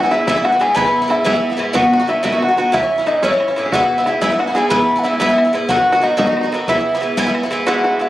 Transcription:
0.00 E4 F#4 F#5
0.05 E3 B3
0.11 G#2 E3 B3 E4 E5, bodhran
0.27 G#2 E3 B3 E4 E5, bodhran
0.36 E3 B3 E4
0.45 F#4 F#5, bodhran
0.52 E3 B3 E4
0.60 G#2 E3 B3 E4 G#4 G#5, bodhran
0.75 G#2 E3 B3 E4 B4 B5, bodhran
0.85 E3 B3 E4
1.02 E3 B3 E4
1.08 G#2 E3 B3 E4 E5, bodhran
1.24 G#2 E3 B3 E4 E5, bodhran
1.34 E3 B3 E4
1.50 E3 B3 E4
1.57 G#2 E3 B3 E4, bodhran
1.73 B2 D#3 B3 F#4 F#5, bodhran
1.82 D#3 B3 F#4
1.93 F#4
2.00 D#3 B3 F#4
2.07 B2 D#3 B3 E4 F#4 E5, bodhran
2.23 B2 D#3 B3 E4 F#4 E5, bodhran
2.32 D#3 B3 F#4
2.42 F#4 F#5, bodhran
2.48 D#3 B3 F#4
2.57 B2 D#3 B3 F#4 F#5, bodhran
2.72 A2 E3 C#4 E4 E5, bodhran
2.81 E3 C#4 E4
2.98 E3 C#4 E4
3.06 A2 E3 C#4 D#4 E4 D#5, bodhran
3.22 A2 E3 C#4 E4 C#5, bodhran
3.32 E3 C#4 E4
3.40 bodhran
3.48 E3 C#4 E4
3.56 A2 E3 C#4 E4, bodhran
3.66 G#4
3.72 G#2 E3 B3 E4 F#4 F#5, bodhran
3.81 E3 B3 E4
3.98 E3 B3 E4
4.06 G#2 E3 B3 E4 E5, bodhran
4.21 G#2 E3 B3 E4 E5, bodhran
4.31 E3 B3 E4
4.39 F#4 F#5, bodhran
4.47 E3 B3 E4
4.55 G#2 E3 B3 E4 G#4 G#5, bodhran
4.69 G#2 E3 B3 E4 B4 B5, bodhran
4.79 E3 B3 E4
4.96 E3 B3 E4 F#5
5.03 G#2 E3 B3 E4 E5
5.19 G#2 E3 B3 E4 E5, bodhran
5.29 E3 B3 E4
5.38 bodhran
5.45 E3 B3 E4
5.53 G#2 E3 B3 E4, bodhran
5.68 A2 D#3 B3 F#4 F#5, bodhran
5.77 D#3 B3 F#4
5.82 F#4
5.92 D#3 B3 F#4
6.01 A2 D#3 B3 D#4 F#4 D#5, bodhran
6.17 A2 D#3 B3 D#4 F#4 D#5, bodhran
6.26 D#3 B3 D#4 F#4
6.37 bodhran
6.41 B3 D#4 F#4
6.45 D#3
6.52 A2 D#3 B3 F#4, bodhran
6.68 G#2 E3 B3 E4 E5, bodhran
6.78 E3 B3 E4
6.95 E3 B3 E4
7.01 G#2 E3 B3 E4, bodhran
7.17 G#2 E3 B3 E4, bodhran
7.27 E3 B3 E4
7.35 bodhran
7.43 E3 B3 E4
7.51 G#2 E3 B3 E4, bodhran
7.67 G#2 E3 B3 E4 F#4 F#5
7.84 F#4
7.99 G#2 E3 B3 E4 E5

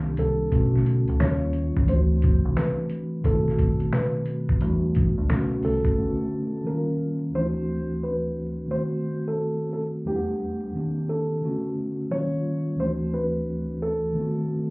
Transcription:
Already playing: C2 D#3 A#3 C4 D4 G4
0.17 C2 A4, closed hi-hat
0.50 B1 D3 A3 B3 C#4, kick, closed hi-hat
0.55 F#4
0.76 snare
0.86 closed hi-hat
1.08 C#2, closed hi-hat
1.19 D#2 D#3 G3 A#3 C#4 C#5, finger snap, snare, closed hi-hat
1.23 F4
1.53 closed hi-hat
1.77 C2, kick
1.85 E3 A3, closed hi-hat
1.89 D2 C4 D4 C5
1.93 F#4
2.22 kick, closed hi-hat
2.45 C2
2.57 B4, finger snap, snare, closed hi-hat
2.90 closed hi-hat
3.21 B1 D#3 A3, kick, closed hi-hat
3.25 B3 C4 A4
3.30 E4
3.36 F#4
3.48 snare
3.59 kick, closed hi-hat
3.80 closed hi-hat
3.93 B4, finger snap, snare, closed hi-hat
4.26 closed hi-hat
4.49 kick
4.59 E2 G3 A3 B3 D4, closed hi-hat
4.64 F#4
4.95 kick, closed hi-hat
5.18 D2
5.27 B1 D3 A3 B3 C#4, finger snap, snare, closed hi-hat
5.31 F#4
5.63 C2 A4, open hi-hat
5.85 kick, closed hi-hat
5.95 D3 A3 B3 C#4
6.00 F#4
6.64 D#3 G3 A#3 C#4 A#4
6.68 D#4
6.75 F4
7.30 D2 E3 A3
7.35 C4 D4 E4 C5
7.45 F#4
8.03 B4
8.66 D#3 A3
8.70 B3 C4 C5
8.75 F#4
9.28 A4
9.73 A4
10.05 E2 G3 A3 B3 D4 G4
10.09 E4
10.15 F#5
10.73 D#3 A#3 C4 D4
10.77 G4
11.09 A4
11.41 D3 A3 B3 C#4
11.45 F#4
12.10 D#3 F#3 A#3 C#4 C#5
12.14 G3 F4
12.76 D2 E3 A3
12.80 C4 D4 C5
12.84 F#4
13.14 B4
13.82 A4
14.12 D#3 A3
14.16 B3 C4
14.21 F#4

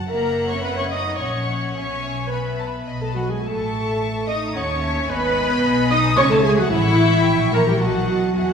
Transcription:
0.10 F#1 A#3 A#4 E5 F#5 A#5
0.50 C#4 C#5 C#6
0.63 B3 B4 B5
0.78 C#4 C#5 C#6
0.91 D#4 D#5 D#6
1.19 A#1 C#4 C#5 E5 F#5 C#6
1.74 B1 C#4 C#5 E5 G#5 C#6
2.30 B3 B4 E5 G#5 B5
2.59 A5
2.87 B1 D#5 B5
3.01 A3 A4 A5
3.14 F#3 F#4 F#5
3.29 G#3 G#4 G#5
3.43 A1 A3 A4 E5 A5 C#6
4.27 D#4 D#5 D#6
4.54 D#2 C#4 C#5 F#5 A5 C#6
4.82 E5
5.08 G#1 B3 B4 D#5 G#5 B5
5.63 B1
5.90 D#4 D#5 D#6
6.17 C#2 C#4 C#5 E5 G#5 C#6
6.31 A3 A4 A5
6.45 G#3 G#4 G#5
6.58 F#3 F#4 F#5
6.71 A1 E3 E4 E5 F#5 C#6
7.25 A#1 G5 C#6
7.52 A#3 A#4 E5 A#5
7.67 G3 G4 G5
7.80 B1 F#3 F#4 D#5 F#5 A5
8.35 E2 F#3 F#4 E5 F#5 G#5

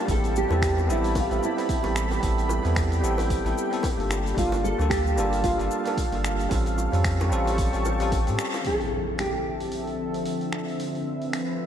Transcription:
Already playing: G4 A5
0.05 A1 G3 B3 C4 E4 A4 B5, kick, open hi-hat, high bongo, shaker
0.11 A4
0.24 open hi-hat, shaker
0.36 G4, shaker
0.48 E2 G3 B3 C4 E4 A4, high bongo, shaker
0.62 finger snap, kick, open hi-hat, shaker
0.78 high bongo, shaker
0.87 A1 G3 B3 C4 E4 A4, shaker
0.92 E4
1.04 open hi-hat, shaker
1.15 F4, kick, open hi-hat, high bongo, shaker
1.29 A1 G3 B3 C4 E4 A4, open hi-hat, shaker
1.43 E4, high bongo, shaker
1.56 G3 B3 C4 E4 A4, open hi-hat, shaker
1.69 kick, open hi-hat, shaker
1.83 A1 G3 B3 C4 E4 A4, open hi-hat, high bongo
1.96 finger snap, shaker
2.11 open hi-hat, high bongo, shaker
2.20 A1 G3 B3 C4 E4 A4 G5, kick, open hi-hat, shaker
2.38 open hi-hat, shaker
2.49 high bongo, shaker
2.62 E2 G3 B3 C4 E4 A4, open hi-hat, shaker
2.75 finger snap, kick, open hi-hat, high bongo, shaker
2.92 open hi-hat, shaker
3.01 A1 G3 B3 C4 E4 A4, shaker
3.18 open hi-hat, high bongo, shaker
3.30 kick, open hi-hat, shaker
3.44 A1 G3 B3 C4 E4 A4, open hi-hat, high bongo, shaker
3.58 shaker
3.70 G3 B3 C4 E4 A4, open hi-hat, shaker
3.83 kick, open hi-hat, high bongo, shaker
3.97 G1 G3 A#3 D4 F4 A4, open hi-hat
4.09 F5 A5, finger snap, high bongo, shaker
4.26 open hi-hat, shaker
4.34 G1 G3 A#3 D4 F4 A4, kick, open hi-hat, shaker
4.39 F4
4.52 open hi-hat, high bongo, shaker
4.64 A4, shaker
4.78 D2 G3 A#3 D4 F4 A4, high bongo, shaker
4.90 G4, finger snap, kick, open hi-hat, shaker
5.07 shaker
5.16 G1 G3 A#3 D4 F4 A4, high bongo, shaker
5.33 open hi-hat, shaker
5.44 F4, kick, open hi-hat, high bongo, shaker
5.57 G1 G3 A#3 D4 F4 A4, open hi-hat, shaker
5.71 shaker
5.85 G3 A#3 D4 F4 A4, open hi-hat, high bongo, shaker
5.97 kick, open hi-hat, shaker
6.12 G1 G3 A#3 D4 F4 A4, open hi-hat, high bongo
6.24 finger snap, shaker
6.39 open hi-hat, shaker
6.49 A1 G3 C4 C#4 F4 G4 A4 A5 C#6, kick, open hi-hat, high bongo, shaker
6.66 open hi-hat, shaker
6.78 high bongo, shaker
6.92 F2 G3 C4 C#4 F4 A4, open hi-hat, shaker
7.04 finger snap, kick, open hi-hat, shaker
7.20 open hi-hat, high bongo, shaker
7.29 A1 G3 C4 C#4 F4 A4, shaker
7.47 open hi-hat, high bongo, shaker
7.58 kick, open hi-hat, shaker
7.72 A1 G3 C4 C#4 F4 A4, open hi-hat, shaker
7.85 high bongo, shaker
8.00 G3 C4 C#4 F4 A4, open hi-hat, shaker
8.12 kick, open hi-hat, high bongo, shaker
8.26 A2 G3 C4 C#4 F4, open hi-hat, shaker
8.30 A4
8.39 finger snap, shaker
8.54 open hi-hat, high bongo, shaker
8.62 F3 C4 D4, open hi-hat, impact
8.66 D3 F3 C4 E4 A4 E5
8.81 open hi-hat
9.19 G4, finger snap, open hi-hat
9.61 open hi-hat
9.72 open hi-hat
9.87 open hi-hat
10.14 open hi-hat
10.26 open hi-hat
10.41 open hi-hat
10.53 finger snap
10.68 open hi-hat
10.79 B4, open hi-hat
10.95 open hi-hat
11.22 open hi-hat
11.33 finger snap, open hi-hat

